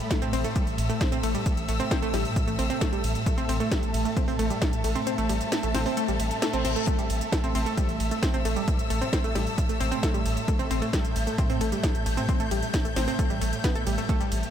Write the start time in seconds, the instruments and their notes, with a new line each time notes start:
Already playing: synth drone A2, string section A3 A4 E5 B5
0.11 synth arpeggio sound A3, kick, snare, closed hi-hat
0.20 sub bass A1, synth arpeggio sound C4, string section E6, closed hi-hat
0.33 sub bass A1, synth arpeggio sound C4, open hi-hat, ride
0.44 synth arpeggio sound A3, closed hi-hat
0.56 synth arpeggio sound G3, kick, closed hi-hat
0.67 sub bass A1, open hi-hat
0.78 sub bass A1, open hi-hat, ride
0.90 synth arpeggio sound A3, closed hi-hat
1.01 synth arpeggio sound C4, kick, snare, closed hi-hat
1.12 sub bass A1, synth arpeggio sound C4, closed hi-hat
1.23 sub bass A1, synth arpeggio sound A3, open hi-hat, ride
1.35 synth arpeggio sound G3, closed hi-hat
1.46 kick, closed hi-hat
1.57 sub bass A1, closed hi-hat
1.69 sub bass A1, synth arpeggio sound A3, open hi-hat, ride
1.80 synth arpeggio sound C4, closed hi-hat
1.91 synth arpeggio sound C4, kick, snare, closed hi-hat
2.02 sub bass A1, synth arpeggio sound A3, closed hi-hat
2.14 sub bass A1, synth arpeggio sound G3, snare, open hi-hat, ride
2.25 open hi-hat
2.36 kick, closed hi-hat
2.47 sub bass A1, synth arpeggio sound A3, closed hi-hat
2.59 sub bass A1, synth arpeggio sound C4, open hi-hat, ride
2.70 synth arpeggio sound C4, closed hi-hat
2.81 synth arpeggio sound A3, kick, snare, closed hi-hat
2.93 sub bass A1, synth arpeggio sound G3, closed hi-hat
3.04 sub bass A1, open hi-hat, ride
3.15 closed hi-hat
3.26 synth arpeggio sound A3, kick, closed hi-hat
3.38 sub bass A1, synth arpeggio sound C4, closed hi-hat
3.49 sub bass A1, synth arpeggio sound C4, open hi-hat, ride
3.60 synth arpeggio sound A3, closed hi-hat
3.71 synth arpeggio sound G3, kick, snare, closed hi-hat
3.80 sub bass A1, string section A5, closed hi-hat
3.94 sub bass A1, open hi-hat, ride
4.05 synth arpeggio sound A3, closed hi-hat
4.17 synth arpeggio sound C4, kick, closed hi-hat
4.28 sub bass A1, synth arpeggio sound C4, open hi-hat
4.39 sub bass A1, synth arpeggio sound A3, open hi-hat, ride
4.50 synth arpeggio sound G3, closed hi-hat
4.62 kick, snare, closed hi-hat
4.73 sub bass A1, closed hi-hat
4.84 sub bass A1, synth arpeggio sound A3, open hi-hat, ride
4.95 synth arpeggio sound C4, closed hi-hat
5.07 synth arpeggio sound C4, closed hi-hat
5.18 sub bass A1, synth arpeggio sound A3, closed hi-hat
5.29 sub bass A1, synth arpeggio sound G3, open hi-hat, ride
5.41 closed hi-hat
5.52 snare, closed hi-hat
5.63 sub bass A1, synth arpeggio sound A3, closed hi-hat
5.75 sub bass A1, synth arpeggio sound C4, snare, open hi-hat, ride
5.86 synth arpeggio sound C4, open hi-hat
5.97 synth arpeggio sound A3, closed hi-hat, reverse cymbal
6.08 sub bass A1, synth arpeggio sound G3, closed hi-hat
6.20 sub bass A1, open hi-hat, ride
6.31 closed hi-hat
6.42 synth arpeggio sound A3, snare, closed hi-hat
6.53 sub bass A1, synth arpeggio sound C4, closed hi-hat
6.65 sub bass A1, synth arpeggio sound C4, open hi-hat, ride
6.76 synth arpeggio sound A3, closed hi-hat
6.87 synth drone A2, synth arpeggio sound A3, kick, closed hi-hat
6.99 sub bass A1, synth arpeggio sound G3, closed hi-hat
7.10 sub bass A1, open hi-hat, ride
7.21 closed hi-hat
7.32 synth arpeggio sound A3, kick, snare, closed hi-hat
7.41 sub bass A1, synth arpeggio sound C4, string section E6, closed hi-hat
7.55 sub bass A1, synth arpeggio sound C4, open hi-hat, ride
7.66 synth arpeggio sound A3, closed hi-hat
7.77 synth arpeggio sound G3, kick, closed hi-hat
7.89 sub bass A1, open hi-hat
8.00 sub bass A1, open hi-hat, ride
8.11 synth arpeggio sound A3, closed hi-hat
8.23 synth arpeggio sound C4, kick, snare, closed hi-hat
8.34 sub bass A1, synth arpeggio sound C4, closed hi-hat
8.45 sub bass A1, synth arpeggio sound A3, open hi-hat, ride
8.56 synth arpeggio sound G3, closed hi-hat
8.68 kick, closed hi-hat
8.79 sub bass A1, closed hi-hat
8.90 sub bass A1, synth arpeggio sound A3, open hi-hat, ride
9.02 synth arpeggio sound C4, closed hi-hat
9.13 synth arpeggio sound C4, kick, snare, closed hi-hat
9.24 sub bass A1, synth arpeggio sound A3, closed hi-hat
9.35 sub bass A1, synth arpeggio sound G3, snare, open hi-hat, ride
9.47 open hi-hat
9.58 kick, closed hi-hat
9.69 sub bass A1, synth arpeggio sound A3, closed hi-hat
9.80 sub bass A1, synth arpeggio sound C4, open hi-hat, ride
9.92 synth arpeggio sound C4, closed hi-hat
10.03 synth arpeggio sound A3, kick, snare, closed hi-hat
10.14 sub bass A1, synth arpeggio sound G3, closed hi-hat
10.26 sub bass A1, open hi-hat, ride
10.37 closed hi-hat
10.48 synth arpeggio sound A3, kick, closed hi-hat
10.59 sub bass A1, synth arpeggio sound C4, closed hi-hat
10.71 sub bass A1, synth arpeggio sound C4, open hi-hat, ride
10.82 synth arpeggio sound A3, closed hi-hat
10.93 synth arpeggio sound G3, kick, snare, closed hi-hat
11.02 sub bass A1, string section G6, closed hi-hat
11.16 sub bass A1, open hi-hat, ride
11.27 synth arpeggio sound A3, closed hi-hat
11.38 synth arpeggio sound C4, kick, closed hi-hat
11.50 sub bass A1, synth arpeggio sound C4, open hi-hat
11.61 sub bass A1, synth arpeggio sound A3, open hi-hat, ride
11.72 synth arpeggio sound G3, closed hi-hat
11.83 kick, snare, closed hi-hat
11.95 sub bass A1, closed hi-hat
12.06 sub bass A1, synth arpeggio sound A3, open hi-hat, ride
12.17 synth arpeggio sound C4, closed hi-hat
12.29 synth arpeggio sound C4, kick, closed hi-hat
12.40 sub bass A1, synth arpeggio sound A3, closed hi-hat
12.51 sub bass A1, synth arpeggio sound G3, open hi-hat, ride
12.63 closed hi-hat
12.74 kick, snare, closed hi-hat
12.85 sub bass A1, synth arpeggio sound A3, closed hi-hat
12.96 sub bass A1, synth arpeggio sound C4, snare, open hi-hat, ride
13.08 synth arpeggio sound C4, open hi-hat
13.19 synth arpeggio sound A3, kick, closed hi-hat
13.30 sub bass A1, synth arpeggio sound G3, closed hi-hat
13.41 sub bass A1, synth arpeggio sound A3, open hi-hat, ride
13.53 closed hi-hat
13.64 synth arpeggio sound B3, kick, snare, closed hi-hat
13.75 sub bass A1, synth arpeggio sound A4, closed hi-hat
13.87 sub bass A1, synth arpeggio sound G3, open hi-hat, ride
13.98 synth arpeggio sound A3, closed hi-hat
14.09 synth arpeggio sound A3, kick, closed hi-hat
14.20 sub bass A1, synth arpeggio sound G3, closed hi-hat
14.32 sub bass A1, open hi-hat, ride
14.43 closed hi-hat